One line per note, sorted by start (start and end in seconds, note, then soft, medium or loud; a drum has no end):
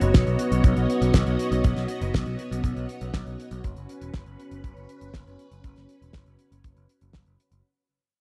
0.00 0.11 F#1 medium
0.00 3.60 B3 medium
0.00 7.60 F#4 medium
0.00 3.60 C#5 medium
0.00 3.60 D#5 loud
0.00 closed hi-hat medium
0.14 0.23 B1 medium
0.14 kick loud
0.14 snare loud
0.14 closed hi-hat medium
0.27 0.36 B1 medium
0.27 closed hi-hat soft
0.39 closed hi-hat loud
0.52 0.61 B1 medium
0.52 closed hi-hat medium
0.64 0.73 B1 medium
0.64 kick loud
0.64 closed hi-hat medium
0.77 0.86 B1 medium
0.77 closed hi-hat soft
0.90 closed hi-hat medium
1.02 1.10 B1 medium
1.02 closed hi-hat medium
1.14 1.23 B1 loud
1.14 kick loud
1.14 snare loud
1.14 closed hi-hat medium
1.26 1.35 B1 medium
1.26 closed hi-hat soft
1.39 closed hi-hat medium
1.51 1.60 B1 medium
1.51 closed hi-hat medium
1.64 1.73 B1 loud
1.64 kick loud
1.64 closed hi-hat medium
1.76 1.85 B1 medium
1.76 snare soft
1.76 closed hi-hat soft
1.88 closed hi-hat medium
2.01 2.10 F#1 medium
2.01 closed hi-hat medium
2.14 2.23 B1 loud
2.14 kick loud
2.14 snare loud
2.14 closed hi-hat medium
2.26 2.35 B1 medium
2.26 closed hi-hat soft
2.39 closed hi-hat medium
2.51 2.60 B1 medium
2.51 closed hi-hat medium
2.64 2.73 B1 medium
2.64 kick loud
2.64 closed hi-hat medium
2.76 2.85 B1 medium
2.76 closed hi-hat soft
2.89 closed hi-hat medium
3.01 3.10 B1 medium
3.01 closed hi-hat medium
3.14 3.23 B1 loud
3.14 kick loud
3.14 snare loud
3.14 closed hi-hat medium
3.26 3.35 B1 medium
3.26 closed hi-hat soft
3.40 closed hi-hat medium
3.51 3.60 B1 medium
3.51 closed hi-hat medium
3.64 3.73 F#1 loud
3.64 7.60 C#4 medium
3.64 7.60 B4 loud
3.64 kick loud
3.64 closed hi-hat medium
3.76 3.85 F#1 medium
3.76 closed hi-hat soft
3.89 closed hi-hat medium
4.01 4.10 E1 medium
4.01 closed hi-hat medium
4.14 kick loud
4.14 snare loud
4.14 closed hi-hat medium
4.26 4.35 F#1 medium
4.26 closed hi-hat soft
4.40 closed hi-hat medium
4.51 4.60 F#1 medium
4.51 closed hi-hat medium
4.64 4.73 F#1 medium
4.64 kick loud
4.64 closed hi-hat medium
4.77 4.85 F#1 medium
4.77 closed hi-hat soft
4.89 closed hi-hat medium
5.01 5.10 F#1 medium
5.01 closed hi-hat medium
5.14 5.23 F#1 medium
5.14 kick loud
5.14 snare loud
5.14 closed hi-hat medium
5.27 5.35 F#1 medium
5.27 closed hi-hat soft
5.39 closed hi-hat medium
5.52 5.60 F#1 medium
5.52 closed hi-hat medium
5.64 5.73 F#1 loud
5.64 kick loud
5.64 closed hi-hat medium
5.76 5.86 F#1 medium
5.76 snare soft
5.76 closed hi-hat soft
5.89 closed hi-hat medium
6.02 6.11 E1 medium
6.02 closed hi-hat medium
6.13 6.23 F#1 medium
6.13 kick loud
6.13 snare loud
6.13 closed hi-hat medium
6.26 6.35 F#1 medium
6.26 closed hi-hat soft
6.39 closed hi-hat medium
6.52 6.61 F#1 medium
6.52 closed hi-hat medium
6.64 6.73 F#1 medium
6.64 kick loud
6.64 closed hi-hat medium
6.77 6.85 F#1 medium
6.77 closed hi-hat soft
6.89 closed hi-hat medium
7.01 7.11 F#1 medium
7.01 closed hi-hat medium
7.13 7.23 F#1 loud
7.13 kick loud
7.13 snare loud
7.13 closed hi-hat medium
7.26 7.35 F#1 medium
7.26 closed hi-hat soft
7.40 closed hi-hat loud
7.52 7.60 F#1 medium
7.52 closed hi-hat medium